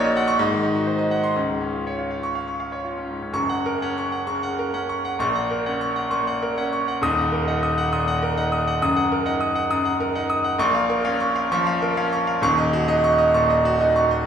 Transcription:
grand piano
Already playing: A#1 A#2 A#3 D#4 F#4 C#5
0.04 D#5
0.17 F#5
0.28 C#6
0.39 G#2
0.51 D#3
0.63 D#4
0.75 F#4
0.87 C5
0.99 D#5
1.11 F#5
1.24 C6
1.36 C#2
1.49 G#2
1.61 C#4
1.74 F4
1.87 C#5
1.99 F4
2.11 F5
2.23 C#6
2.35 F5
2.48 C#6
2.60 F5
2.72 C#5
2.85 F4
2.97 C#4
3.09 G#2
3.22 C#4
3.33 F#1 F#2 C#6
3.49 F#5
3.66 A#4
3.82 C#4 F#5
3.98 C#6
4.12 F#5
4.27 C#3 C#6
4.43 F#5
4.59 A#4
4.74 C#4 F#5
4.89 C#6
5.05 F#5
5.19 A#1 A#2 C#6
5.35 F#5
5.51 A#4
5.66 C#4 F#5
5.81 C#6
5.96 F#5
6.11 A#2 C#6
6.27 F#5
6.42 A#4
6.58 C#4 F#5
6.73 C#6
6.88 F#5
7.02 D#1 D#2 D#6
7.18 F#5
7.32 A#4
7.48 D#4 F#5
7.63 D#6
7.78 F#5
7.93 A#2 D#6
8.08 F#5
8.22 A#4
8.37 D#4 F#5
8.52 D#6
8.67 F#5
8.81 F#1 F#2 D#6
8.96 F#5
9.12 A#4
9.26 D#4 F#5
9.41 D#6
9.55 F#5
9.70 F#2 D#6
9.85 F#5
10.00 A#4
10.15 D#4 F#5
10.30 D#6
10.44 F#5
10.59 A#1 A#2 C#6
10.75 F5
10.90 A#4
11.05 C#4 F5
11.20 C#6
11.36 F5
11.52 F3 C#6
11.67 F5
11.82 A#4
11.97 C#4 F5
12.13 C#6
12.27 F5
12.42 D#1 D#2 C#6
12.58 D#5
12.73 F#4
12.88 D#4 D#5
13.04 C#6
13.18 D#5
13.34 A#2 C#6
13.50 D#5
13.65 F#4
13.81 D#4 D#5
13.96 C#6
14.11 D#5

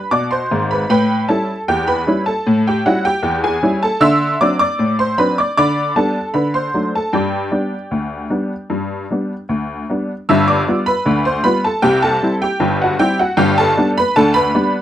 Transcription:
honky-tonk piano
Already playing: B4 B5
0.11 B2 D5 D6
0.31 C5 C6
0.51 G#1 G#2
0.71 B4 B5
0.89 A2 B4 G5 B5
1.28 G3 C#4 E4 A4 A5
1.68 E2 G4 G5
1.88 B4 B5
2.07 G3 C#4 E4
2.26 A4 A5
2.47 A2
2.67 G4 G5
2.86 G3 C#4 E4 F#4 F#5
3.05 G4 G5
3.23 E2
3.44 G#4 G#5
3.63 G3 C#4 E4
3.83 A4 A5
4.00 D3 E5 C6 E6
4.41 F#3 C4 D4 D5 D6
4.59 D5 D6
4.79 A2
4.99 C5 C6
5.18 F#3 C4 D4 B4 B5
5.38 D5 D6
5.57 D3 D5 B5 D6
5.96 G3 B3 D4 A4 A5
6.34 D3 B4 B5
6.54 C5 C6
6.74 F#3 A3 D4
6.95 A4 A5
7.13 G2 G4 D5 G5
7.51 G3 B3 D4
7.91 D2
8.30 G3 B3 D4
8.70 G2
9.11 G3 B3 D4
9.49 D2
9.90 G3 B3 D4
10.29 G1 G2 E5 E6
10.48 D5 D6
10.68 G3 B3 F4
10.86 B4 B5
11.05 D2 D3
11.25 C5 C6
11.44 G3 B3 F4 B4 B5
11.64 A4 A5
11.82 C2 C3 G4 G5
12.02 A4 A5
12.23 G3 C4 E4
12.42 G4 G5
12.60 G1 G2
12.82 F#4 F#5
12.99 G3 C4 E4 G4 G5
13.19 F#4 F#5
13.37 G1 G2 G4 G5
13.58 A4 A5
13.77 G3 B3 D4
13.98 B4 B5
14.16 D2 D3 A4 A5
14.34 B4 B5
14.55 G3 B3 D4

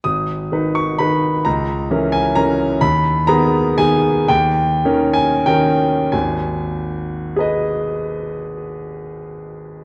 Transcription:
grand piano
0.04 G#1 D#6
0.52 D#3 D#4 B4
0.75 C#6
0.99 D#3 D#4 B4 B5
1.45 C#2 A#5
1.91 E3 C#4 A#4
2.12 G#5
2.35 E3 C#4 A#4 A#5
2.81 D#2 B5
3.27 D#3 B3 G#4 A#5
3.78 D#3 B3 G#4 G#5
4.28 D#2 G5
4.85 D#3 C#4 A#4
5.14 G#5
5.46 D#3 C#4 A#4 G5
6.12 G#1 D#2 G#5
7.36 G#4 B4
7.40 D#5

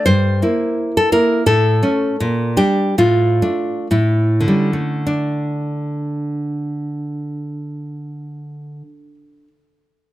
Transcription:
nylon-string guitar
0.06 G2 C5
0.42 A#3 E4
0.97 A4
1.12 A#3 E4 A#4
1.46 A2 A4
1.83 A3 C#4
2.20 A#2
2.57 G3 D4 G4
2.98 A2 F4
3.42 A3 D4
3.91 A2 E4
4.40 D3
4.48 G3 C#4
4.73 A3
5.07 D4

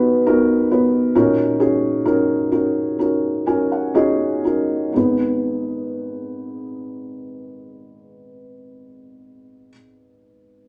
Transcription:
felt piano
Already playing: B3 D#4 F#4 A#4 B4
0.26 B3 D#4 F#4 A#4
0.71 B3 D#4 F#4 B4
1.15 A#2 C#4 D#4 F#4 A#4
1.59 C#4 D#4 F#4 G#4
2.05 C#4 D#4 F#4 A#4
2.52 C#4 D#4 F#4 A#4
2.99 C#4 D#4 F#4 A#4
3.46 C#4 D#4 F#4 A#4 G#5
3.72 F#5
3.94 C#4 D#4 F#4 G#4 D#5
4.44 C#4 D#4 F#4 A#4
4.92 G#1 B3 D#4 G#4
4.97 B4

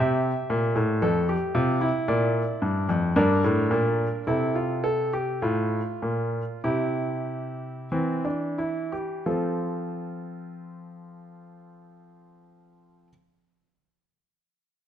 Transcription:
grand piano
0.00 C3 G4 E5
0.50 A#2
0.76 A2
1.02 F2 A4
1.29 G4
1.55 C3 F4
1.81 E4
2.08 A#2 D5
2.62 G2
2.89 F2
3.16 G2 D4 A#4
3.44 A2
3.71 A#2
4.27 C3 E4 A4
4.55 F4
4.84 A4
5.13 G4
5.42 A2 F4
6.02 A#2
6.64 C3 E4 G4
7.92 E3 C4
8.25 D4
8.58 E4
8.92 G4
9.26 F3 C4 F4 A4

